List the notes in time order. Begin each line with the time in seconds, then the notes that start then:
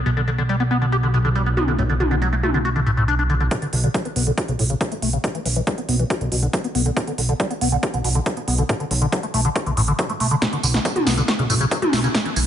0.06 B1 B2, closed hi-hat
0.17 D3, closed hi-hat
0.28 D3, closed hi-hat
0.38 D3, closed hi-hat
0.49 G3, closed hi-hat
0.60 B3, closed hi-hat
0.71 B3, closed hi-hat
0.82 D3, closed hi-hat
0.92 G4, closed hi-hat
1.03 D3, closed hi-hat
1.14 B2, closed hi-hat
1.25 D3, closed hi-hat
1.35 G3, closed hi-hat
1.46 B3, closed hi-hat
1.57 B3, closed hi-hat, mid tom
1.68 D3, closed hi-hat
1.79 B1 A2, closed hi-hat
1.89 D3, closed hi-hat
2.00 D3, closed hi-hat, mid tom
2.11 D3, closed hi-hat
2.22 F#3, closed hi-hat
2.33 A3, closed hi-hat
2.43 A3, closed hi-hat, mid tom
2.54 D3, closed hi-hat
2.65 F#4, closed hi-hat
2.76 D3, closed hi-hat
2.86 A2, closed hi-hat
2.97 A2, closed hi-hat
3.08 D4, closed hi-hat
3.19 D4, closed hi-hat
3.30 D3, closed hi-hat
3.40 D3, closed hi-hat
3.51 B2, kick, closed hi-hat
3.62 D3, closed hi-hat
3.73 B1 D3, open hi-hat
3.84 D3, closed hi-hat
3.94 F#3, kick, closed hi-hat
4.05 B3, closed hi-hat
4.16 B1 B3, open hi-hat
4.27 D3, closed hi-hat
4.38 F#4, kick, closed hi-hat
4.48 B1 C#3, closed hi-hat
4.59 B1 A2, open hi-hat
4.70 C#3, closed hi-hat
4.81 F#3, kick, closed hi-hat
4.91 A3, closed hi-hat
5.02 B1 A3, open hi-hat
5.13 C#3, closed hi-hat
5.24 B2, kick, closed hi-hat
5.35 E3, closed hi-hat
5.45 B1 E3, open hi-hat
5.56 E3, closed hi-hat
5.67 G3, kick, closed hi-hat
5.78 B3, closed hi-hat
5.89 B1 B3, open hi-hat
5.99 E3, closed hi-hat
6.10 F#4, kick, closed hi-hat
6.21 B1 D3, closed hi-hat
6.32 B1 B2, open hi-hat
6.42 D3, closed hi-hat
6.53 F#3, kick, closed hi-hat
6.64 B3, closed hi-hat
6.75 B1 B3, open hi-hat
6.86 D3, closed hi-hat
6.97 B2, kick, closed hi-hat
7.07 D3, closed hi-hat
7.18 B1 D3, open hi-hat
7.29 D3, closed hi-hat
7.40 G3, kick, closed hi-hat
7.50 B3, closed hi-hat
7.61 B1 B3, open hi-hat
7.72 D3, closed hi-hat
7.83 G4, kick, closed hi-hat
7.94 B1 D3, closed hi-hat
8.04 B1 B2, open hi-hat
8.15 D3, closed hi-hat
8.26 G3, kick, closed hi-hat
8.37 B3, closed hi-hat
8.48 B1 B3, open hi-hat
8.58 D3, closed hi-hat
8.69 A2, kick, closed hi-hat
8.80 D3, closed hi-hat
8.91 B1 D3, open hi-hat
9.02 D3, closed hi-hat
9.12 F#3, kick, closed hi-hat
9.23 A3, closed hi-hat
9.34 B1 A3, open hi-hat
9.45 D3, closed hi-hat
9.56 F#4, kick, closed hi-hat
9.66 B1 D3, closed hi-hat
9.77 A1 A2, open hi-hat
9.88 D3, closed hi-hat
9.99 F#3, kick, closed hi-hat
10.09 A3, closed hi-hat
10.20 B1 A3, open hi-hat
10.31 D3, closed hi-hat
10.42 B2, kick, snare, closed hi-hat, tambourine
10.53 D3, closed hi-hat
10.63 B1 D3, open hi-hat, tambourine
10.74 B2, snare, closed hi-hat, tambourine
10.85 F#3, kick, closed hi-hat, tambourine
10.96 B3, closed hi-hat, mid tom
11.07 B1 B3, snare, open hi-hat, tambourine
11.17 D3, closed hi-hat, tambourine
11.28 F#4, kick, snare, closed hi-hat, tambourine
11.39 B1 C#3, closed hi-hat
11.50 B1 A2, open hi-hat, tambourine
11.61 C#3, closed hi-hat, tambourine
11.71 F#3, kick, closed hi-hat, tambourine
11.82 A3, closed hi-hat, mid tom
11.93 B1 A3, snare, open hi-hat, mid tom, tambourine
12.04 C#3, closed hi-hat, tambourine
12.14 B2, kick, snare, closed hi-hat, tambourine
12.25 E3, closed hi-hat
12.36 B1 E3, open hi-hat, tambourine